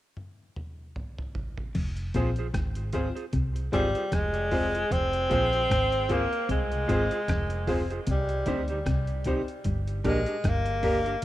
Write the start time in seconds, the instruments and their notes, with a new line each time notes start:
0.17 high tom
0.56 mid tom
0.96 mid tom
1.18 mid tom
1.35 floor tom
1.57 floor tom
1.75 fingered electric bass F1, clean electric guitar F2, kick, crash
1.96 closed hi-hat
2.14 fingered electric bass A#1, clean electric guitar A#2 F4 G#4 C5, upright piano C4 F4 G#4 C5, kick, closed hi-hat
2.36 clean electric guitar G#4 C5, closed hi-hat
2.40 clean electric guitar F4
2.54 fingered electric bass G#1, clean electric guitar G#2, kick, cross-stick, closed hi-hat
2.75 closed hi-hat
2.93 upright piano C4 F4 G#4 C5, clean electric guitar F4 G#4 C5, kick, closed hi-hat
3.15 clean electric guitar F4 G#4 C5, closed hi-hat
3.33 fingered electric bass C2, clean electric guitar C3, kick, closed hi-hat
3.56 closed hi-hat
3.72 fingered electric bass G#1, clean electric guitar G#2 F4 G#4 C5, tenor saxophone G3, upright piano C4 F4 G#4 C5, kick, cross-stick, closed hi-hat
3.95 clean electric guitar F4 G#4 C5, closed hi-hat
4.12 fingered electric bass F1, clean electric guitar F2, tenor saxophone G#3, kick, cross-stick, closed hi-hat
4.34 closed hi-hat
4.51 upright piano C4 F4 G#4 C5, clean electric guitar F4 G#4 C5, kick, open hi-hat
4.74 clean electric guitar F4 G#4 C5, upright piano G#4 C5, closed hi-hat
4.91 fingered electric bass F1, clean electric guitar F2, tenor saxophone C4, kick, closed hi-hat
5.13 closed hi-hat
5.30 fingered electric bass A#1, clean electric guitar A#2 F4 G#4 C5, upright piano C4 F4 G#4 C5, kick, closed hi-hat
5.52 clean electric guitar F4 G#4 C5, closed hi-hat
5.70 fingered electric bass G#1, clean electric guitar G#2, kick, cross-stick, closed hi-hat
5.92 closed hi-hat
6.09 tenor saxophone A#3, upright piano C4 F4 G#4 C5, clean electric guitar F4 G#4 C5, kick, closed hi-hat
6.33 closed hi-hat
6.49 fingered electric bass C2, clean electric guitar C3, tenor saxophone G#3, kick, closed hi-hat
6.72 closed hi-hat
6.88 fingered electric bass G#1, clean electric guitar G#2 F4 G#4 C5, upright piano C4 F4 G#4 C5, kick, cross-stick, closed hi-hat
7.11 clean electric guitar F4 G#4 C5, closed hi-hat
7.28 fingered electric bass F1, clean electric guitar F2, kick, cross-stick, closed hi-hat
7.50 closed hi-hat
7.67 upright piano C4 F4 G#4 C5, clean electric guitar F4 G#4 C5, kick, open hi-hat
7.90 clean electric guitar F4 G#4 C5, upright piano G#4 C5, closed hi-hat
8.07 fingered electric bass C2, clean electric guitar C3, tenor saxophone G3, kick, closed hi-hat
8.29 closed hi-hat
8.46 fingered electric bass D2, clean electric guitar D3 D#4 G4 C5, upright piano C4 D#4 G4 C5, kick, closed hi-hat
8.68 clean electric guitar D#4 G4 C5, closed hi-hat
8.86 fingered electric bass C2, clean electric guitar C3, kick, cross-stick, closed hi-hat
9.07 closed hi-hat
9.24 upright piano C4 D#4 G4 C5, clean electric guitar D#4 G4 C5, kick, closed hi-hat
9.48 closed hi-hat
9.64 fingered electric bass G1, clean electric guitar G2, kick, closed hi-hat
9.87 closed hi-hat
10.04 fingered electric bass A#1, clean electric guitar A#2 D4 G4 A#4, tenor saxophone G#3, upright piano A#3 D4 G4 A#4, kick, cross-stick, closed hi-hat
10.26 clean electric guitar D4 G4 A#4, closed hi-hat
10.44 fingered electric bass G1, clean electric guitar G2, kick, cross-stick, closed hi-hat
10.48 tenor saxophone A#3
10.66 closed hi-hat
10.83 upright piano A#3 D4 G4 A#4, clean electric guitar D4 G4 A#4, kick, open hi-hat
11.05 clean electric guitar D4 G4 A#4, closed hi-hat